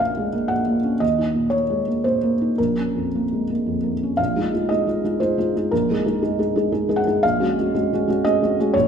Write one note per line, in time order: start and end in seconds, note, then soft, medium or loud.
0.00 0.99 A#1 soft
0.00 0.11 A#2 soft
0.00 0.28 A#3 soft
0.00 0.84 C#4 soft
0.00 0.51 F5 medium
0.00 0.48 F#5 medium
0.17 0.35 G#3 soft
0.33 0.61 A#3 soft
0.48 0.78 A#2 soft
0.48 0.75 F#5 medium
0.67 0.95 A#3 soft
0.84 1.01 C#4 soft
1.00 2.53 D#2 soft
1.00 1.52 D#5 medium
1.19 1.46 D#4 soft
1.34 1.63 A#2 soft
1.50 1.79 A#3 soft
1.50 2.03 C#5 medium
1.70 1.87 G#3 soft
1.88 2.15 A#3 soft
2.04 2.33 A#2 soft
2.04 2.58 C5 medium
2.23 2.51 A#3 soft
2.41 2.58 D#4 soft
2.58 4.15 A#1 soft
2.58 3.92 A#4 soft
2.78 3.06 C#4 soft
2.95 3.24 F2 soft
3.15 3.43 A#3 soft
3.32 3.49 G#3 soft
3.50 3.77 A#3 soft
3.66 3.94 F2 soft
3.83 4.11 A#3 soft
4.03 4.19 C#4 soft
4.17 4.35 A#1 soft
4.17 4.69 F5 medium
4.36 4.51 G#3 soft
4.36 4.52 D#4 soft
4.36 4.51 F4 soft
4.54 4.69 G#3 soft
4.54 4.69 D#4 soft
4.54 4.69 F4 soft
4.69 4.85 G#3 soft
4.69 4.85 D#4 soft
4.69 4.86 F4 soft
4.69 5.20 D#5 medium
4.87 5.02 G#3 soft
4.87 5.02 D#4 soft
4.87 5.03 F4 soft
5.04 5.19 G#3 soft
5.04 5.19 D#4 soft
5.04 5.20 F4 soft
5.20 5.36 G#3 soft
5.20 5.36 D#4 soft
5.20 5.36 F4 soft
5.20 5.71 C5 medium
5.38 5.53 G#3 soft
5.38 5.53 D#4 soft
5.38 5.53 F4 soft
5.56 5.71 G#3 soft
5.56 5.71 D#4 soft
5.56 5.71 F4 soft
5.71 5.88 A#1 soft
5.71 6.98 A#4 medium
5.90 6.05 G#3 soft
5.90 6.05 D#4 soft
5.90 6.05 G#4 soft
6.06 6.21 G#3 soft
6.06 6.21 D#4 soft
6.06 6.21 G#4 soft
6.23 6.37 G#3 soft
6.23 6.37 D#4 soft
6.23 6.38 G#4 soft
6.39 6.54 G#3 soft
6.39 6.54 D#4 soft
6.39 6.54 G#4 soft
6.56 6.71 G#3 soft
6.56 6.71 D#4 soft
6.56 6.71 G#4 soft
6.72 6.87 G#3 soft
6.72 6.87 D#4 soft
6.72 6.88 G#4 soft
6.89 7.04 G#3 soft
6.89 7.04 D#4 soft
6.89 7.05 G#4 soft
6.96 7.22 F#5 medium
7.07 7.22 G#3 soft
7.07 7.22 D#4 soft
7.07 7.22 G#4 soft
7.23 7.40 A#1 soft
7.23 8.24 F5 medium
7.40 7.56 G#3 soft
7.40 7.55 C#4 soft
7.40 7.56 F#4 soft
7.59 7.73 G#3 soft
7.59 7.73 C#4 soft
7.59 7.73 F#4 soft
7.75 7.90 G#3 soft
7.75 7.90 C#4 soft
7.75 7.90 F#4 soft
7.93 8.06 G#3 soft
7.93 8.07 C#4 soft
7.93 8.08 F#4 soft
8.08 8.23 G#3 soft
8.08 8.23 C#4 soft
8.08 8.24 F#4 soft
8.25 8.40 G#3 soft
8.25 8.40 C#4 soft
8.25 8.41 F#4 soft
8.25 8.74 D#5 medium
8.42 8.57 G#3 soft
8.42 8.57 C#4 soft
8.42 8.58 F#4 soft
8.60 8.74 G#3 soft
8.60 8.74 C#4 soft
8.60 8.74 F#4 soft
8.74 8.88 A#1 medium
8.74 8.88 C#5 medium